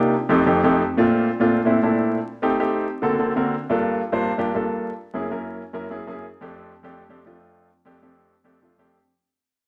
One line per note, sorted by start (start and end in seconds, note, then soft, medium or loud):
0.00 0.12 C3 medium
0.00 0.13 A#3 medium
0.00 0.13 D4 medium
0.00 0.13 D#4 medium
0.00 0.13 F4 medium
0.00 0.13 G4 medium
0.29 0.41 F2 medium
0.29 0.42 A3 medium
0.29 0.42 C4 medium
0.29 0.42 D#4 medium
0.29 0.42 G4 medium
0.46 0.58 F2 medium
0.46 0.59 A3 medium
0.46 0.59 C4 medium
0.46 0.59 D#4 medium
0.46 0.59 G4 medium
0.64 0.81 F2 medium
0.64 0.81 A3 medium
0.64 0.81 C4 medium
0.64 0.81 D#4 medium
0.64 0.81 G4 medium
0.97 1.27 A#2 medium
0.97 1.27 A3 medium
0.97 1.28 C4 medium
0.97 1.28 D4 medium
0.97 1.28 F4 loud
1.40 1.58 A#2 medium
1.40 1.58 A3 medium
1.40 1.58 C4 medium
1.40 1.58 D4 medium
1.40 1.58 F4 medium
1.65 1.77 A#2 medium
1.65 1.77 A3 medium
1.65 1.78 C4 medium
1.65 1.78 D4 medium
1.65 1.78 E4 medium
1.82 2.17 A#2 medium
1.82 2.17 A3 medium
1.82 2.17 C4 medium
1.82 2.17 D4 medium
1.82 2.17 E4 medium
2.42 2.54 A3 medium
2.42 2.54 C4 medium
2.42 2.55 D#4 medium
2.42 2.55 G4 medium
2.59 2.85 A3 medium
2.59 2.85 C4 medium
2.59 2.85 D#4 medium
2.59 2.85 G4 medium
3.02 3.14 D3 medium
3.02 3.14 A#3 medium
3.02 3.14 C4 medium
3.02 3.14 F#4 medium
3.02 3.14 A4 medium
3.19 3.31 D3 medium
3.19 3.31 A#3 medium
3.19 3.31 C4 medium
3.19 3.31 F#4 medium
3.19 3.31 A4 medium
3.36 3.53 D3 medium
3.36 3.53 A#3 medium
3.36 3.53 C4 medium
3.36 3.53 F#4 medium
3.36 3.53 A#4 medium
3.69 3.99 G2 medium
3.69 4.00 A#3 medium
3.69 4.00 D4 medium
3.69 4.00 F4 medium
3.69 4.00 A4 medium
4.12 4.30 G2 medium
4.12 4.30 A#3 medium
4.12 4.30 D4 medium
4.12 4.30 F4 medium
4.12 4.31 C5 medium
4.38 4.50 G2 medium
4.38 4.50 A#3 medium
4.38 4.50 D4 medium
4.38 4.50 F4 medium
4.38 4.50 G4 medium
4.55 4.89 G2 medium
4.55 4.89 A#3 medium
4.55 4.89 D4 medium
4.55 4.89 F4 medium
4.55 4.89 A4 medium
5.14 5.26 F#2 medium
5.14 5.26 A#3 medium
5.14 5.26 C#4 medium
5.14 5.26 E4 medium
5.14 5.27 G#4 medium
5.31 5.61 F#2 medium
5.31 5.61 A#3 medium
5.31 5.61 C#4 medium
5.31 5.61 E4 medium
5.31 5.61 A#4 medium
5.73 5.85 F#2 medium
5.73 5.86 A#3 medium
5.73 5.86 C#4 medium
5.73 5.86 E4 medium
5.73 5.86 A#4 medium
5.90 6.02 F#2 medium
5.90 6.02 A#3 medium
5.90 6.03 C#4 medium
5.90 6.03 E4 medium
5.90 6.03 G#4 medium
6.07 6.24 F#2 medium
6.07 6.25 A#3 medium
6.07 6.25 C#4 medium
6.07 6.25 E4 medium
6.07 6.25 G#4 loud
6.41 6.71 F2 medium
6.41 6.71 A3 medium
6.41 6.71 C4 medium
6.41 6.71 D4 medium
6.41 6.72 G4 medium
6.83 7.01 F2 medium
6.83 7.02 A3 medium
6.83 7.02 C4 medium
6.83 7.02 D4 medium
6.83 7.02 G4 medium
7.09 7.21 F2 medium
7.09 7.21 A3 medium
7.09 7.21 C4 medium
7.09 7.22 D4 medium
7.09 7.22 G4 medium
7.26 7.68 F2 medium
7.26 7.68 A3 medium
7.26 7.68 C4 medium
7.26 7.68 D4 medium
7.26 7.68 F4 medium
7.85 7.97 F2 medium
7.85 7.98 A3 medium
7.85 7.98 C4 medium
7.85 7.98 D4 medium
7.85 7.98 G4 medium
8.02 8.32 F2 medium
8.02 8.32 A3 medium
8.02 8.32 C4 medium
8.02 8.32 D4 medium
8.02 8.33 G4 medium
8.44 8.57 F2 medium
8.44 8.57 A3 medium
8.44 8.57 C4 medium
8.44 8.57 D4 medium
8.44 8.57 G4 medium
8.61 8.73 F2 medium
8.61 8.74 A3 medium
8.61 8.74 C4 medium
8.61 8.74 D4 medium
8.61 8.74 F4 medium
8.78 8.96 F2 medium
8.78 8.96 A3 medium
8.78 8.96 C4 medium
8.78 8.96 D4 medium
8.78 8.96 G4 medium